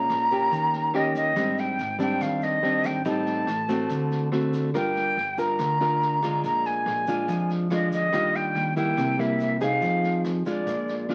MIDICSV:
0, 0, Header, 1, 5, 480
1, 0, Start_track
1, 0, Key_signature, -3, "major"
1, 0, Tempo, 422833
1, 1548, Time_signature, 4, 2, 24, 8
1, 12654, End_track
2, 0, Start_track
2, 0, Title_t, "Flute"
2, 0, Program_c, 0, 73
2, 0, Note_on_c, 0, 82, 105
2, 1086, Note_on_c, 0, 75, 80
2, 1103, Note_off_c, 0, 82, 0
2, 1317, Note_off_c, 0, 75, 0
2, 1325, Note_on_c, 0, 75, 86
2, 1814, Note_on_c, 0, 79, 84
2, 1831, Note_off_c, 0, 75, 0
2, 2281, Note_off_c, 0, 79, 0
2, 2286, Note_on_c, 0, 79, 78
2, 2521, Note_on_c, 0, 77, 75
2, 2538, Note_off_c, 0, 79, 0
2, 2764, Note_on_c, 0, 75, 80
2, 2781, Note_off_c, 0, 77, 0
2, 3246, Note_on_c, 0, 79, 75
2, 3263, Note_off_c, 0, 75, 0
2, 3477, Note_off_c, 0, 79, 0
2, 3487, Note_on_c, 0, 81, 84
2, 4872, Note_off_c, 0, 81, 0
2, 5397, Note_on_c, 0, 79, 91
2, 6118, Note_on_c, 0, 82, 92
2, 6135, Note_off_c, 0, 79, 0
2, 7313, Note_off_c, 0, 82, 0
2, 7321, Note_on_c, 0, 82, 94
2, 7563, Note_on_c, 0, 80, 91
2, 7580, Note_off_c, 0, 82, 0
2, 8516, Note_off_c, 0, 80, 0
2, 8766, Note_on_c, 0, 75, 79
2, 8981, Note_off_c, 0, 75, 0
2, 8997, Note_on_c, 0, 75, 91
2, 9488, Note_on_c, 0, 79, 87
2, 9505, Note_off_c, 0, 75, 0
2, 9954, Note_off_c, 0, 79, 0
2, 9961, Note_on_c, 0, 79, 83
2, 10446, Note_on_c, 0, 76, 88
2, 10463, Note_off_c, 0, 79, 0
2, 10918, Note_off_c, 0, 76, 0
2, 10931, Note_on_c, 0, 77, 85
2, 11595, Note_off_c, 0, 77, 0
2, 11906, Note_on_c, 0, 74, 65
2, 12564, Note_off_c, 0, 74, 0
2, 12654, End_track
3, 0, Start_track
3, 0, Title_t, "Nylon-string guitar"
3, 0, Program_c, 1, 24
3, 0, Note_on_c, 1, 46, 49
3, 0, Note_on_c, 1, 56, 56
3, 0, Note_on_c, 1, 61, 51
3, 0, Note_on_c, 1, 65, 62
3, 313, Note_off_c, 1, 56, 0
3, 314, Note_off_c, 1, 61, 0
3, 316, Note_off_c, 1, 65, 0
3, 353, Note_on_c, 1, 58, 49
3, 356, Note_on_c, 1, 61, 47
3, 364, Note_on_c, 1, 67, 52
3, 566, Note_off_c, 1, 46, 0
3, 580, Note_on_c, 1, 51, 47
3, 1032, Note_off_c, 1, 61, 0
3, 1033, Note_off_c, 1, 58, 0
3, 1038, Note_off_c, 1, 67, 0
3, 1061, Note_on_c, 1, 58, 49
3, 1067, Note_on_c, 1, 61, 45
3, 1073, Note_on_c, 1, 67, 56
3, 1520, Note_off_c, 1, 51, 0
3, 1525, Note_off_c, 1, 58, 0
3, 1528, Note_off_c, 1, 61, 0
3, 1531, Note_off_c, 1, 67, 0
3, 1544, Note_on_c, 1, 44, 50
3, 1548, Note_on_c, 1, 55, 58
3, 1553, Note_on_c, 1, 62, 55
3, 1555, Note_on_c, 1, 60, 51
3, 2024, Note_off_c, 1, 55, 0
3, 2026, Note_off_c, 1, 60, 0
3, 2028, Note_off_c, 1, 62, 0
3, 2255, Note_on_c, 1, 55, 56
3, 2262, Note_on_c, 1, 60, 50
3, 2269, Note_on_c, 1, 62, 58
3, 2483, Note_off_c, 1, 44, 0
3, 2496, Note_on_c, 1, 51, 48
3, 2943, Note_off_c, 1, 55, 0
3, 2945, Note_off_c, 1, 60, 0
3, 2950, Note_off_c, 1, 62, 0
3, 2980, Note_on_c, 1, 55, 47
3, 2984, Note_on_c, 1, 60, 50
3, 2992, Note_on_c, 1, 62, 50
3, 3426, Note_off_c, 1, 55, 0
3, 3427, Note_off_c, 1, 60, 0
3, 3431, Note_off_c, 1, 62, 0
3, 3438, Note_off_c, 1, 51, 0
3, 3462, Note_on_c, 1, 45, 52
3, 3468, Note_on_c, 1, 55, 48
3, 3470, Note_on_c, 1, 63, 58
3, 3473, Note_on_c, 1, 60, 49
3, 3944, Note_off_c, 1, 55, 0
3, 3945, Note_off_c, 1, 60, 0
3, 3946, Note_off_c, 1, 63, 0
3, 4188, Note_on_c, 1, 57, 51
3, 4191, Note_on_c, 1, 60, 46
3, 4194, Note_on_c, 1, 66, 57
3, 4402, Note_off_c, 1, 45, 0
3, 4427, Note_on_c, 1, 50, 47
3, 4870, Note_off_c, 1, 57, 0
3, 4870, Note_off_c, 1, 60, 0
3, 4872, Note_off_c, 1, 66, 0
3, 4904, Note_on_c, 1, 57, 51
3, 4907, Note_on_c, 1, 60, 53
3, 4913, Note_on_c, 1, 66, 51
3, 5348, Note_off_c, 1, 57, 0
3, 5348, Note_off_c, 1, 60, 0
3, 5352, Note_off_c, 1, 66, 0
3, 5363, Note_off_c, 1, 50, 0
3, 5381, Note_on_c, 1, 55, 49
3, 5384, Note_on_c, 1, 62, 49
3, 5392, Note_on_c, 1, 65, 52
3, 5392, Note_on_c, 1, 70, 52
3, 5862, Note_off_c, 1, 62, 0
3, 5863, Note_off_c, 1, 65, 0
3, 5867, Note_off_c, 1, 70, 0
3, 6105, Note_on_c, 1, 62, 50
3, 6110, Note_on_c, 1, 65, 44
3, 6119, Note_on_c, 1, 70, 57
3, 6322, Note_off_c, 1, 55, 0
3, 6352, Note_on_c, 1, 50, 50
3, 6548, Note_off_c, 1, 62, 0
3, 6551, Note_off_c, 1, 65, 0
3, 6553, Note_off_c, 1, 70, 0
3, 6591, Note_on_c, 1, 62, 52
3, 6596, Note_on_c, 1, 65, 54
3, 6604, Note_on_c, 1, 70, 60
3, 7032, Note_off_c, 1, 62, 0
3, 7032, Note_off_c, 1, 65, 0
3, 7037, Note_off_c, 1, 70, 0
3, 7069, Note_on_c, 1, 56, 62
3, 7079, Note_on_c, 1, 62, 59
3, 7082, Note_on_c, 1, 65, 61
3, 7286, Note_off_c, 1, 50, 0
3, 7316, Note_on_c, 1, 46, 51
3, 7991, Note_off_c, 1, 56, 0
3, 7993, Note_off_c, 1, 62, 0
3, 7997, Note_off_c, 1, 65, 0
3, 8031, Note_on_c, 1, 56, 51
3, 8039, Note_on_c, 1, 62, 53
3, 8047, Note_on_c, 1, 65, 50
3, 8248, Note_off_c, 1, 46, 0
3, 8274, Note_on_c, 1, 53, 48
3, 8712, Note_off_c, 1, 56, 0
3, 8715, Note_off_c, 1, 62, 0
3, 8720, Note_off_c, 1, 65, 0
3, 8753, Note_on_c, 1, 56, 49
3, 8758, Note_on_c, 1, 65, 51
3, 8760, Note_on_c, 1, 62, 46
3, 9193, Note_off_c, 1, 56, 0
3, 9195, Note_off_c, 1, 62, 0
3, 9195, Note_off_c, 1, 65, 0
3, 9208, Note_off_c, 1, 53, 0
3, 9225, Note_on_c, 1, 55, 54
3, 9230, Note_on_c, 1, 51, 54
3, 9234, Note_on_c, 1, 62, 54
3, 9240, Note_on_c, 1, 65, 56
3, 9909, Note_off_c, 1, 55, 0
3, 9914, Note_off_c, 1, 62, 0
3, 9915, Note_off_c, 1, 65, 0
3, 9947, Note_on_c, 1, 55, 50
3, 9954, Note_on_c, 1, 58, 49
3, 9955, Note_on_c, 1, 64, 60
3, 10166, Note_off_c, 1, 51, 0
3, 10188, Note_on_c, 1, 48, 54
3, 10391, Note_off_c, 1, 55, 0
3, 10392, Note_off_c, 1, 58, 0
3, 10394, Note_off_c, 1, 64, 0
3, 10427, Note_on_c, 1, 55, 55
3, 10434, Note_on_c, 1, 58, 59
3, 10439, Note_on_c, 1, 64, 54
3, 10871, Note_off_c, 1, 55, 0
3, 10872, Note_off_c, 1, 58, 0
3, 10876, Note_off_c, 1, 64, 0
3, 10905, Note_on_c, 1, 60, 55
3, 10908, Note_on_c, 1, 63, 52
3, 10915, Note_on_c, 1, 68, 59
3, 11125, Note_off_c, 1, 48, 0
3, 11141, Note_on_c, 1, 53, 52
3, 11830, Note_off_c, 1, 60, 0
3, 11832, Note_off_c, 1, 63, 0
3, 11834, Note_off_c, 1, 68, 0
3, 11873, Note_off_c, 1, 53, 0
3, 11877, Note_on_c, 1, 56, 56
3, 11884, Note_on_c, 1, 62, 48
3, 11886, Note_on_c, 1, 65, 52
3, 12113, Note_on_c, 1, 46, 48
3, 12556, Note_off_c, 1, 56, 0
3, 12560, Note_off_c, 1, 62, 0
3, 12560, Note_off_c, 1, 65, 0
3, 12588, Note_on_c, 1, 56, 41
3, 12594, Note_on_c, 1, 62, 46
3, 12603, Note_on_c, 1, 65, 51
3, 12654, Note_off_c, 1, 46, 0
3, 12654, Note_off_c, 1, 56, 0
3, 12654, Note_off_c, 1, 62, 0
3, 12654, Note_off_c, 1, 65, 0
3, 12654, End_track
4, 0, Start_track
4, 0, Title_t, "Upright bass"
4, 0, Program_c, 2, 32
4, 111, Note_on_c, 2, 34, 90
4, 556, Note_off_c, 2, 34, 0
4, 588, Note_on_c, 2, 39, 84
4, 1262, Note_off_c, 2, 39, 0
4, 1307, Note_on_c, 2, 39, 77
4, 1531, Note_off_c, 2, 39, 0
4, 1547, Note_on_c, 2, 32, 82
4, 1994, Note_off_c, 2, 32, 0
4, 2032, Note_on_c, 2, 32, 87
4, 2477, Note_off_c, 2, 32, 0
4, 2506, Note_on_c, 2, 39, 85
4, 3227, Note_on_c, 2, 32, 73
4, 3244, Note_off_c, 2, 39, 0
4, 3450, Note_off_c, 2, 32, 0
4, 3465, Note_on_c, 2, 33, 88
4, 3913, Note_off_c, 2, 33, 0
4, 3940, Note_on_c, 2, 33, 93
4, 4390, Note_off_c, 2, 33, 0
4, 4421, Note_on_c, 2, 38, 80
4, 5099, Note_off_c, 2, 38, 0
4, 5148, Note_on_c, 2, 38, 70
4, 5371, Note_off_c, 2, 38, 0
4, 5387, Note_on_c, 2, 31, 87
4, 5834, Note_off_c, 2, 31, 0
4, 5867, Note_on_c, 2, 31, 88
4, 6314, Note_off_c, 2, 31, 0
4, 6346, Note_on_c, 2, 38, 93
4, 7065, Note_on_c, 2, 31, 77
4, 7082, Note_off_c, 2, 38, 0
4, 7289, Note_off_c, 2, 31, 0
4, 7310, Note_on_c, 2, 34, 82
4, 7756, Note_off_c, 2, 34, 0
4, 7786, Note_on_c, 2, 34, 92
4, 8234, Note_off_c, 2, 34, 0
4, 8268, Note_on_c, 2, 41, 95
4, 8989, Note_off_c, 2, 41, 0
4, 8989, Note_on_c, 2, 38, 83
4, 9212, Note_off_c, 2, 38, 0
4, 9228, Note_on_c, 2, 39, 85
4, 9675, Note_off_c, 2, 39, 0
4, 9706, Note_on_c, 2, 39, 97
4, 10154, Note_off_c, 2, 39, 0
4, 10187, Note_on_c, 2, 36, 87
4, 10863, Note_off_c, 2, 36, 0
4, 10909, Note_on_c, 2, 36, 72
4, 11133, Note_off_c, 2, 36, 0
4, 11152, Note_on_c, 2, 41, 86
4, 11598, Note_off_c, 2, 41, 0
4, 11631, Note_on_c, 2, 41, 86
4, 12078, Note_off_c, 2, 41, 0
4, 12110, Note_on_c, 2, 34, 84
4, 12654, Note_off_c, 2, 34, 0
4, 12654, End_track
5, 0, Start_track
5, 0, Title_t, "Drums"
5, 107, Note_on_c, 9, 82, 50
5, 110, Note_on_c, 9, 37, 54
5, 110, Note_on_c, 9, 38, 22
5, 220, Note_off_c, 9, 82, 0
5, 224, Note_off_c, 9, 37, 0
5, 224, Note_off_c, 9, 38, 0
5, 349, Note_on_c, 9, 36, 23
5, 350, Note_on_c, 9, 82, 58
5, 351, Note_on_c, 9, 38, 21
5, 462, Note_off_c, 9, 36, 0
5, 463, Note_off_c, 9, 82, 0
5, 465, Note_off_c, 9, 38, 0
5, 584, Note_on_c, 9, 38, 22
5, 588, Note_on_c, 9, 36, 59
5, 592, Note_on_c, 9, 82, 61
5, 697, Note_off_c, 9, 38, 0
5, 701, Note_off_c, 9, 36, 0
5, 705, Note_off_c, 9, 82, 0
5, 825, Note_on_c, 9, 38, 23
5, 831, Note_on_c, 9, 82, 21
5, 938, Note_off_c, 9, 38, 0
5, 945, Note_off_c, 9, 82, 0
5, 1065, Note_on_c, 9, 37, 54
5, 1065, Note_on_c, 9, 38, 24
5, 1178, Note_off_c, 9, 37, 0
5, 1178, Note_off_c, 9, 38, 0
5, 1305, Note_on_c, 9, 38, 19
5, 1307, Note_on_c, 9, 36, 21
5, 1307, Note_on_c, 9, 82, 59
5, 1418, Note_off_c, 9, 38, 0
5, 1420, Note_off_c, 9, 36, 0
5, 1420, Note_off_c, 9, 82, 0
5, 1543, Note_on_c, 9, 82, 61
5, 1544, Note_on_c, 9, 37, 51
5, 1544, Note_on_c, 9, 38, 23
5, 1546, Note_on_c, 9, 36, 54
5, 1657, Note_off_c, 9, 37, 0
5, 1657, Note_off_c, 9, 38, 0
5, 1657, Note_off_c, 9, 82, 0
5, 1660, Note_off_c, 9, 36, 0
5, 1787, Note_on_c, 9, 38, 21
5, 1788, Note_on_c, 9, 82, 23
5, 1900, Note_off_c, 9, 38, 0
5, 1901, Note_off_c, 9, 82, 0
5, 2028, Note_on_c, 9, 82, 46
5, 2030, Note_on_c, 9, 38, 22
5, 2141, Note_off_c, 9, 82, 0
5, 2143, Note_off_c, 9, 38, 0
5, 2264, Note_on_c, 9, 82, 55
5, 2266, Note_on_c, 9, 36, 23
5, 2267, Note_on_c, 9, 38, 21
5, 2377, Note_off_c, 9, 82, 0
5, 2380, Note_off_c, 9, 36, 0
5, 2380, Note_off_c, 9, 38, 0
5, 2502, Note_on_c, 9, 82, 58
5, 2506, Note_on_c, 9, 36, 55
5, 2508, Note_on_c, 9, 37, 60
5, 2508, Note_on_c, 9, 38, 24
5, 2616, Note_off_c, 9, 82, 0
5, 2620, Note_off_c, 9, 36, 0
5, 2621, Note_off_c, 9, 37, 0
5, 2621, Note_off_c, 9, 38, 0
5, 2740, Note_on_c, 9, 82, 24
5, 2748, Note_on_c, 9, 38, 23
5, 2853, Note_off_c, 9, 82, 0
5, 2861, Note_off_c, 9, 38, 0
5, 2989, Note_on_c, 9, 38, 23
5, 3103, Note_off_c, 9, 38, 0
5, 3219, Note_on_c, 9, 82, 61
5, 3224, Note_on_c, 9, 37, 52
5, 3224, Note_on_c, 9, 38, 22
5, 3225, Note_on_c, 9, 36, 22
5, 3332, Note_off_c, 9, 82, 0
5, 3337, Note_off_c, 9, 37, 0
5, 3337, Note_off_c, 9, 38, 0
5, 3339, Note_off_c, 9, 36, 0
5, 3461, Note_on_c, 9, 38, 20
5, 3461, Note_on_c, 9, 82, 56
5, 3464, Note_on_c, 9, 36, 52
5, 3574, Note_off_c, 9, 82, 0
5, 3575, Note_off_c, 9, 38, 0
5, 3577, Note_off_c, 9, 36, 0
5, 3700, Note_on_c, 9, 38, 21
5, 3703, Note_on_c, 9, 82, 24
5, 3813, Note_off_c, 9, 38, 0
5, 3817, Note_off_c, 9, 82, 0
5, 3940, Note_on_c, 9, 37, 53
5, 3940, Note_on_c, 9, 38, 20
5, 3946, Note_on_c, 9, 82, 46
5, 4054, Note_off_c, 9, 37, 0
5, 4054, Note_off_c, 9, 38, 0
5, 4059, Note_off_c, 9, 82, 0
5, 4179, Note_on_c, 9, 38, 21
5, 4182, Note_on_c, 9, 36, 21
5, 4187, Note_on_c, 9, 82, 58
5, 4293, Note_off_c, 9, 38, 0
5, 4295, Note_off_c, 9, 36, 0
5, 4301, Note_off_c, 9, 82, 0
5, 4417, Note_on_c, 9, 38, 23
5, 4422, Note_on_c, 9, 36, 58
5, 4423, Note_on_c, 9, 82, 64
5, 4530, Note_off_c, 9, 38, 0
5, 4536, Note_off_c, 9, 36, 0
5, 4536, Note_off_c, 9, 82, 0
5, 4662, Note_on_c, 9, 38, 21
5, 4666, Note_on_c, 9, 82, 23
5, 4775, Note_off_c, 9, 38, 0
5, 4779, Note_off_c, 9, 82, 0
5, 4902, Note_on_c, 9, 37, 53
5, 4902, Note_on_c, 9, 38, 23
5, 5015, Note_off_c, 9, 37, 0
5, 5015, Note_off_c, 9, 38, 0
5, 5140, Note_on_c, 9, 38, 21
5, 5143, Note_on_c, 9, 82, 60
5, 5144, Note_on_c, 9, 36, 20
5, 5254, Note_off_c, 9, 38, 0
5, 5256, Note_off_c, 9, 82, 0
5, 5257, Note_off_c, 9, 36, 0
5, 5382, Note_on_c, 9, 37, 55
5, 5382, Note_on_c, 9, 38, 22
5, 5385, Note_on_c, 9, 36, 58
5, 5386, Note_on_c, 9, 82, 57
5, 5496, Note_off_c, 9, 37, 0
5, 5496, Note_off_c, 9, 38, 0
5, 5499, Note_off_c, 9, 36, 0
5, 5499, Note_off_c, 9, 82, 0
5, 5627, Note_on_c, 9, 82, 24
5, 5630, Note_on_c, 9, 38, 22
5, 5741, Note_off_c, 9, 82, 0
5, 5743, Note_off_c, 9, 38, 0
5, 5871, Note_on_c, 9, 38, 21
5, 5985, Note_off_c, 9, 38, 0
5, 6104, Note_on_c, 9, 82, 58
5, 6107, Note_on_c, 9, 36, 21
5, 6112, Note_on_c, 9, 38, 20
5, 6217, Note_off_c, 9, 82, 0
5, 6221, Note_off_c, 9, 36, 0
5, 6225, Note_off_c, 9, 38, 0
5, 6344, Note_on_c, 9, 37, 60
5, 6344, Note_on_c, 9, 38, 24
5, 6344, Note_on_c, 9, 82, 62
5, 6346, Note_on_c, 9, 36, 55
5, 6457, Note_off_c, 9, 82, 0
5, 6458, Note_off_c, 9, 37, 0
5, 6458, Note_off_c, 9, 38, 0
5, 6460, Note_off_c, 9, 36, 0
5, 6586, Note_on_c, 9, 38, 24
5, 6588, Note_on_c, 9, 82, 24
5, 6699, Note_off_c, 9, 38, 0
5, 6701, Note_off_c, 9, 82, 0
5, 6832, Note_on_c, 9, 38, 22
5, 6945, Note_off_c, 9, 38, 0
5, 7067, Note_on_c, 9, 82, 58
5, 7068, Note_on_c, 9, 36, 20
5, 7068, Note_on_c, 9, 37, 55
5, 7068, Note_on_c, 9, 38, 22
5, 7180, Note_off_c, 9, 82, 0
5, 7181, Note_off_c, 9, 36, 0
5, 7182, Note_off_c, 9, 37, 0
5, 7182, Note_off_c, 9, 38, 0
5, 7306, Note_on_c, 9, 38, 21
5, 7307, Note_on_c, 9, 82, 53
5, 7308, Note_on_c, 9, 36, 55
5, 7419, Note_off_c, 9, 38, 0
5, 7421, Note_off_c, 9, 82, 0
5, 7422, Note_off_c, 9, 36, 0
5, 7545, Note_on_c, 9, 82, 22
5, 7547, Note_on_c, 9, 38, 21
5, 7658, Note_off_c, 9, 82, 0
5, 7660, Note_off_c, 9, 38, 0
5, 7788, Note_on_c, 9, 37, 55
5, 7788, Note_on_c, 9, 38, 23
5, 7901, Note_off_c, 9, 37, 0
5, 7901, Note_off_c, 9, 38, 0
5, 8024, Note_on_c, 9, 82, 61
5, 8028, Note_on_c, 9, 36, 21
5, 8028, Note_on_c, 9, 38, 21
5, 8138, Note_off_c, 9, 82, 0
5, 8142, Note_off_c, 9, 36, 0
5, 8142, Note_off_c, 9, 38, 0
5, 8265, Note_on_c, 9, 38, 24
5, 8268, Note_on_c, 9, 36, 57
5, 8268, Note_on_c, 9, 82, 58
5, 8378, Note_off_c, 9, 38, 0
5, 8381, Note_off_c, 9, 36, 0
5, 8382, Note_off_c, 9, 82, 0
5, 8505, Note_on_c, 9, 82, 23
5, 8509, Note_on_c, 9, 38, 22
5, 8618, Note_off_c, 9, 82, 0
5, 8623, Note_off_c, 9, 38, 0
5, 8745, Note_on_c, 9, 82, 48
5, 8746, Note_on_c, 9, 37, 60
5, 8746, Note_on_c, 9, 38, 23
5, 8858, Note_off_c, 9, 82, 0
5, 8860, Note_off_c, 9, 37, 0
5, 8860, Note_off_c, 9, 38, 0
5, 8986, Note_on_c, 9, 36, 23
5, 8987, Note_on_c, 9, 38, 20
5, 8991, Note_on_c, 9, 82, 64
5, 9099, Note_off_c, 9, 36, 0
5, 9101, Note_off_c, 9, 38, 0
5, 9104, Note_off_c, 9, 82, 0
5, 9223, Note_on_c, 9, 37, 57
5, 9223, Note_on_c, 9, 38, 23
5, 9225, Note_on_c, 9, 36, 56
5, 9229, Note_on_c, 9, 82, 58
5, 9336, Note_off_c, 9, 37, 0
5, 9336, Note_off_c, 9, 38, 0
5, 9339, Note_off_c, 9, 36, 0
5, 9342, Note_off_c, 9, 82, 0
5, 9467, Note_on_c, 9, 38, 21
5, 9472, Note_on_c, 9, 82, 24
5, 9581, Note_off_c, 9, 38, 0
5, 9586, Note_off_c, 9, 82, 0
5, 9705, Note_on_c, 9, 38, 21
5, 9819, Note_off_c, 9, 38, 0
5, 9944, Note_on_c, 9, 36, 21
5, 9944, Note_on_c, 9, 38, 20
5, 9951, Note_on_c, 9, 82, 61
5, 10058, Note_off_c, 9, 36, 0
5, 10058, Note_off_c, 9, 38, 0
5, 10064, Note_off_c, 9, 82, 0
5, 10186, Note_on_c, 9, 36, 60
5, 10186, Note_on_c, 9, 37, 56
5, 10186, Note_on_c, 9, 38, 24
5, 10189, Note_on_c, 9, 82, 60
5, 10299, Note_off_c, 9, 36, 0
5, 10300, Note_off_c, 9, 37, 0
5, 10300, Note_off_c, 9, 38, 0
5, 10303, Note_off_c, 9, 82, 0
5, 10430, Note_on_c, 9, 38, 22
5, 10432, Note_on_c, 9, 82, 22
5, 10544, Note_off_c, 9, 38, 0
5, 10546, Note_off_c, 9, 82, 0
5, 10668, Note_on_c, 9, 82, 50
5, 10672, Note_on_c, 9, 38, 23
5, 10781, Note_off_c, 9, 82, 0
5, 10786, Note_off_c, 9, 38, 0
5, 10906, Note_on_c, 9, 82, 60
5, 10910, Note_on_c, 9, 36, 21
5, 10911, Note_on_c, 9, 37, 54
5, 10911, Note_on_c, 9, 38, 22
5, 11019, Note_off_c, 9, 82, 0
5, 11023, Note_off_c, 9, 36, 0
5, 11025, Note_off_c, 9, 37, 0
5, 11025, Note_off_c, 9, 38, 0
5, 11140, Note_on_c, 9, 82, 56
5, 11150, Note_on_c, 9, 36, 58
5, 11156, Note_on_c, 9, 38, 22
5, 11253, Note_off_c, 9, 82, 0
5, 11264, Note_off_c, 9, 36, 0
5, 11269, Note_off_c, 9, 38, 0
5, 11389, Note_on_c, 9, 82, 22
5, 11392, Note_on_c, 9, 38, 21
5, 11503, Note_off_c, 9, 82, 0
5, 11506, Note_off_c, 9, 38, 0
5, 11629, Note_on_c, 9, 37, 54
5, 11629, Note_on_c, 9, 38, 22
5, 11630, Note_on_c, 9, 82, 49
5, 11742, Note_off_c, 9, 37, 0
5, 11742, Note_off_c, 9, 38, 0
5, 11744, Note_off_c, 9, 82, 0
5, 11870, Note_on_c, 9, 36, 21
5, 11870, Note_on_c, 9, 38, 23
5, 11871, Note_on_c, 9, 82, 55
5, 11984, Note_off_c, 9, 36, 0
5, 11984, Note_off_c, 9, 38, 0
5, 11985, Note_off_c, 9, 82, 0
5, 12111, Note_on_c, 9, 36, 55
5, 12111, Note_on_c, 9, 38, 23
5, 12113, Note_on_c, 9, 82, 60
5, 12224, Note_off_c, 9, 36, 0
5, 12225, Note_off_c, 9, 38, 0
5, 12226, Note_off_c, 9, 82, 0
5, 12351, Note_on_c, 9, 82, 23
5, 12353, Note_on_c, 9, 38, 23
5, 12464, Note_off_c, 9, 82, 0
5, 12466, Note_off_c, 9, 38, 0
5, 12589, Note_on_c, 9, 37, 52
5, 12589, Note_on_c, 9, 38, 21
5, 12654, Note_off_c, 9, 37, 0
5, 12654, Note_off_c, 9, 38, 0
5, 12654, End_track
0, 0, End_of_file